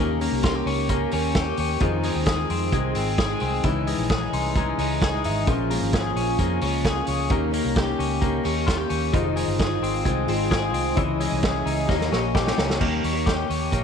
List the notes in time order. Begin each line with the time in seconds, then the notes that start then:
Already playing: D#2 A#3 C#4 G4
0.00 D#4 G4 A#4
0.20 A#3 C#4 G4 A#4, open hi-hat
0.32 C2
0.42 A#3 C#4 F4 G4 A#4, kick, snare, closed hi-hat
0.55 G4
0.66 C#2 C#4, open hi-hat
0.89 A#3 C#4 G4 A#4, kick, closed hi-hat
1.12 D#2 A#3 C#4 G4 A#4, open hi-hat
1.35 G4, kick, snare, closed hi-hat
1.46 C#4 G4 A#4
1.57 D#2 C#4, open hi-hat
1.80 F2 D#3 G#3 C4 D#4 F4 G#4, kick, closed hi-hat
2.02 D#3 G#3 C4 G#4, open hi-hat
2.15 D#2
2.26 D#3 G#3 C4 G#4, kick, snare, closed hi-hat
2.50 F2 C4, open hi-hat
2.72 C2 D#3 G#3 C4 G#4, kick, closed hi-hat
2.95 G#1 D#3 G#3 C4 G#4, open hi-hat
3.18 G#4, kick, snare, closed hi-hat
3.30 D#3 G#3 C4 G#4
3.40 C2 C4, open hi-hat
3.63 C#2 C#3 E3 G#3 D#4 E4 C#5, kick, closed hi-hat
3.87 C#3 E3 G#3 D#4, open hi-hat
3.98 A#1
4.10 C#3 E3 G#3 D#4 G#4, kick, snare, closed hi-hat
4.33 C2 D#4 C6, open hi-hat
4.55 C#3 E3 G#3 D#4 A#5, kick, closed hi-hat
4.78 C#2 C#3 E3 G#3 D#4, open hi-hat
5.01 G#4 G#5, kick, snare, closed hi-hat
5.12 E3 G#3 D#4
5.24 G#1 D#4 E5, open hi-hat
5.46 A#1 F3 G#3 C#4 F4 G#4 A#4, kick, closed hi-hat
5.70 F3 G#3 A#3 C#4 F4, open hi-hat
5.81 G#1
5.92 F3 G#3 C#4 F4 G#4, kick, snare, closed hi-hat
6.15 A#1 C#4, open hi-hat
6.39 F2 F3 G#3 A#3 C#4 F4, kick, closed hi-hat
6.61 C#2 F3 G#3 C#4 F4, open hi-hat
6.85 G#4, kick, snare, closed hi-hat
6.96 G#3 C#4 F4
7.07 C#2 C#4, open hi-hat
7.29 D#2 D#3 A#3 C#4 D#4 G4 C#5, kick, closed hi-hat
7.51 D#3 A#3 C#4 G4, open hi-hat
7.65 C2
7.75 D#3 A#3 C#4 G4, kick, snare, closed hi-hat
7.99 C#2 C#4, open hi-hat
8.21 D#3 A#3 C#4 G4, kick, closed hi-hat
8.43 D#2 D#3 A#3 C#4 G4, open hi-hat
8.67 F4, kick, snare, closed hi-hat
8.77 A#3 C#4 G4
8.90 D#2 C#4, open hi-hat
9.12 F1 D#3 G#3 D#4 F4 G#4 C5 D#5, kick, closed hi-hat
9.36 G#3 D#4 F4 C5, open hi-hat
9.48 G1
9.59 G#3 D#4 F4 G#4 C5, kick, snare, closed hi-hat
9.82 G#1 C4, open hi-hat
10.05 C2 G#3 D#4 F4 C5, kick, closed hi-hat
10.27 G#1 G#3 C4 D#4 F4 G#4 C5 D#5, open hi-hat
10.51 G#4, kick, snare, closed hi-hat
10.62 D#4 F4 C5
10.74 C2 C4, open hi-hat
10.95 C#2 E3 C#4 E4 G#4 C#5 D#5, kick, closed hi-hat
11.20 G#3 C#4 E4 G#4 D#5, open hi-hat
11.32 C2
11.41 C#4 E4 G#4 D#5, kick, snare, closed hi-hat
11.66 C#2 D#4, open hi-hat
11.87 D#2 A#3 D#4 G4 C#5 D#5, kick, snare
12.01 snare
12.11 A#1 A#3 C#4 D#4 G4 C#5, snare
12.35 G4 G5, kick, snare
12.45 A#3 D#4 G4 C#5, snare
12.58 C#2 C#4 A#5, snare
12.70 snare
12.79 D#2 D#3 G3 A#3 D#4 G4 C#5, kick, crash
13.04 D#2 C#4, open hi-hat
13.13 A#3 D#4 G4 C#5
13.26 G4, kick, snare, closed hi-hat
13.50 D#2 C#4, open hi-hat
13.71 A#1 A#3 D#4 G4 C#5, kick, closed hi-hat